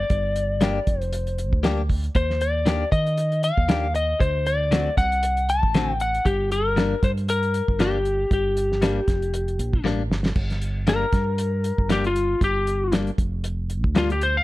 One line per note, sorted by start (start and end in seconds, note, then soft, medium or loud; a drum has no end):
0.00 1.02 D5 medium
0.10 0.78 G1 loud
0.10 kick loud
0.10 closed hi-hat medium
0.36 closed hi-hat medium
0.61 0.78 G3 medium
0.61 0.78 A#3 medium
0.61 0.79 D4 medium
0.61 0.79 G4 medium
0.61 snare loud
0.61 closed hi-hat medium
0.87 1.53 F1 medium
0.87 kick medium
0.87 closed hi-hat medium
1.02 1.61 C5 medium
1.02 closed hi-hat soft
1.13 closed hi-hat medium
1.27 closed hi-hat soft
1.38 closed hi-hat medium
1.53 2.08 D2 medium
1.53 kick medium
1.64 1.80 G3 medium
1.64 1.81 A#3 medium
1.64 1.81 D4 loud
1.64 1.82 G4 loud
1.64 snare loud
1.64 closed hi-hat medium
1.89 kick medium
1.89 open hi-hat medium
2.04 closed hi-hat soft
2.15 2.83 D#2 medium
2.15 2.42 C5 medium
2.15 kick medium
2.15 closed hi-hat medium
2.30 snare soft
2.41 2.89 D5 medium
2.41 closed hi-hat medium
2.66 2.83 D#3 medium
2.66 2.83 A#3 medium
2.66 2.84 D4 medium
2.66 2.84 G4 medium
2.66 snare loud
2.66 closed hi-hat medium
2.92 3.50 D#3 medium
2.92 3.44 D#5 medium
2.92 kick medium
2.92 closed hi-hat medium
3.06 closed hi-hat soft
3.17 closed hi-hat medium
3.32 closed hi-hat soft
3.43 3.95 F5 loud
3.43 closed hi-hat medium
3.58 4.13 D#2 medium
3.58 kick medium
3.69 3.86 D#3 medium
3.69 3.86 A#3 medium
3.69 3.86 D4 medium
3.69 3.87 G4 loud
3.69 snare loud
3.69 closed hi-hat medium
3.95 4.22 D#5 medium
3.95 closed hi-hat medium
4.20 4.88 D2 medium
4.20 4.47 C5 loud
4.20 kick loud
4.20 closed hi-hat medium
4.46 4.97 D5 medium
4.46 closed hi-hat medium
4.71 4.88 D3 medium
4.71 4.89 A3 medium
4.71 4.89 C4 medium
4.71 4.89 F#4 medium
4.71 snare loud
4.71 closed hi-hat medium
4.97 5.63 C2 medium
4.97 5.50 F#5 medium
4.97 kick medium
4.97 snare soft
4.97 closed hi-hat medium
5.12 closed hi-hat soft
5.23 closed hi-hat medium
5.37 closed hi-hat soft
5.49 5.92 A5 loud
5.49 closed hi-hat medium
5.63 6.18 A1 medium
5.63 kick medium
5.74 5.91 D3 medium
5.74 5.92 A3 medium
5.74 5.92 C4 loud
5.74 5.92 F#4 medium
5.74 snare loud
5.74 closed hi-hat medium
5.92 6.02 G5 loud
6.00 6.27 F#5 medium
6.00 closed hi-hat medium
6.14 closed hi-hat soft
6.26 6.94 G1 loud
6.26 6.52 G4 loud
6.26 kick loud
6.26 closed hi-hat medium
6.51 7.05 A#4 medium
6.51 closed hi-hat medium
6.76 6.93 G2 medium
6.76 6.94 G3 medium
6.76 6.94 A#3 medium
6.76 6.95 D4 medium
6.76 snare loud
6.76 closed hi-hat medium
7.03 7.61 G2 medium
7.03 7.11 C5 medium
7.03 kick medium
7.03 closed hi-hat medium
7.17 closed hi-hat soft
7.28 7.81 A#4 loud
7.28 closed hi-hat medium
7.43 closed hi-hat soft
7.54 closed hi-hat medium
7.68 8.24 G1 medium
7.68 kick medium
7.79 7.96 G2 medium
7.79 7.96 G3 medium
7.79 7.97 A#3 medium
7.79 7.97 D4 loud
7.79 8.32 G4 medium
7.79 snare medium
7.79 closed hi-hat medium
8.05 closed hi-hat soft
8.31 8.99 G1 medium
8.31 9.82 G4 medium
8.31 kick medium
8.31 closed hi-hat medium
8.57 closed hi-hat medium
8.72 snare soft
8.82 8.99 G2 medium
8.82 8.99 G3 medium
8.82 8.99 A#3 medium
8.82 9.00 D4 medium
8.82 snare loud
8.82 closed hi-hat medium
9.08 9.58 F1 medium
9.08 kick medium
9.08 snare soft
9.08 closed hi-hat medium
9.22 closed hi-hat soft
9.34 closed hi-hat medium
9.48 closed hi-hat soft
9.59 9.82 A#1 medium
9.59 closed hi-hat medium
9.73 kick medium
9.84 10.08 A1 medium
9.84 10.01 G2 medium
9.84 10.02 G3 medium
9.84 10.02 A#3 medium
9.84 10.02 D4 loud
9.84 snare medium
10.10 10.33 G1 medium
10.10 snare medium
10.26 snare medium
10.36 11.04 G1 medium
10.36 kick loud
10.36 crash medium
10.50 snare soft
10.50 closed hi-hat soft
10.62 closed hi-hat medium
10.87 11.04 G2 medium
10.87 11.04 G3 medium
10.87 11.05 A#3 medium
10.87 11.05 D4 medium
10.87 11.88 A#4 medium
10.87 snare loud
10.87 closed hi-hat medium
11.12 11.71 G2 medium
11.12 kick medium
11.12 snare soft
11.12 closed hi-hat medium
11.38 closed hi-hat medium
11.64 closed hi-hat medium
11.78 12.34 G1 medium
11.78 kick medium
11.89 12.06 G2 medium
11.89 12.07 G3 medium
11.89 12.07 A#3 medium
11.89 12.07 D4 medium
11.89 12.05 G4 medium
11.89 snare loud
11.89 closed hi-hat medium
12.04 12.41 F4 medium
12.04 closed hi-hat soft
12.16 closed hi-hat medium
12.41 13.09 G1 medium
12.41 12.93 G4 medium
12.41 kick loud
12.41 closed hi-hat medium
12.67 closed hi-hat medium
12.92 13.09 G2 medium
12.92 13.10 G3 medium
12.92 13.10 A#3 medium
12.92 13.10 D4 medium
12.92 snare loud
12.92 closed hi-hat medium
13.07 closed hi-hat soft
13.18 13.84 F1 medium
13.18 kick medium
13.18 closed hi-hat medium
13.44 closed hi-hat medium
13.70 closed hi-hat medium
13.84 14.39 D2 medium
13.84 kick medium
13.95 14.12 G2 medium
13.95 14.12 G3 medium
13.95 14.12 A#3 medium
13.95 14.13 D4 medium
13.95 14.11 F4 loud
13.95 snare loud
13.95 closed hi-hat medium
14.10 14.22 G4 medium
14.10 closed hi-hat soft
14.21 14.36 C5 medium
14.21 closed hi-hat medium
14.37 14.44 F5 medium